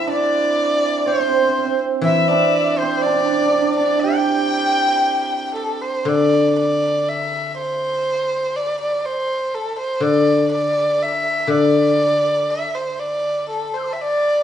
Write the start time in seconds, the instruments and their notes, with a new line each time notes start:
Already playing: guzheng E3, hammered dulcimer C4 E4, dizi E5
0.07 hammered dulcimer D4, dizi D5, erhu D5
0.80 dizi D5
1.06 hammered dulcimer C4, dizi C5, erhu C5
1.13 hammered dulcimer C4
1.20 hammered dulcimer C4
1.29 hammered dulcimer C4
1.35 hammered dulcimer C4
1.42 hammered dulcimer C4
1.48 hammered dulcimer C4
1.58 hammered dulcimer C4
1.66 hammered dulcimer C4
2.02 guzheng E3, dizi E5, erhu E5
2.06 hammered dulcimer E4
2.28 hammered dulcimer D4, erhu D5
2.78 hammered dulcimer C4, dizi C5, erhu C5
3.02 erhu D5, dizi D5
3.06 hammered dulcimer D4
3.14 hammered dulcimer D4
3.20 hammered dulcimer D4
3.25 hammered dulcimer D4
3.34 hammered dulcimer D4
3.42 hammered dulcimer D4
3.55 hammered dulcimer D4
3.62 hammered dulcimer D4
3.76 hammered dulcimer D4, erhu D5, dizi D5
4.00 hammered dulcimer G4, erhu G5, dizi G5
5.55 erhu A4
5.82 erhu C5
6.05 guzheng D3, erhu D5
6.60 erhu D5
7.08 erhu E5
7.59 erhu C5
8.56 erhu D5
8.81 erhu D5
9.05 erhu C5
9.55 erhu A4
9.79 erhu C5
10.00 guzheng D3, erhu D5
10.52 erhu D5
11.02 erhu E5
11.47 guzheng D3, erhu D5
12.50 erhu E5
12.75 erhu C5
13.00 erhu D5
13.50 erhu A4
13.74 erhu C5, dizi E6 G6
13.83 dizi C6 D6
13.87 dizi A5
13.93 erhu E5, dizi E5 G5
14.00 dizi D5, erhu D5